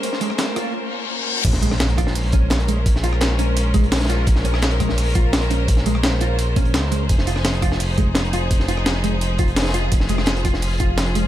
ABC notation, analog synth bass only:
X:1
M:4/4
L:1/8
Q:1/4=170
K:Bbm
V:1 name="Analog synth bass" clef=bass
z8 | B,,,4 B,,,4- | B,,,4- B,,, B,,,3 | B,,,4 B,,,4- |
B,,,4- B,,, B,,, D,,2 | F,,,4 F,,,4- | F,,,4- F,,, F,,,3 | F,,,4 F,,,4 |]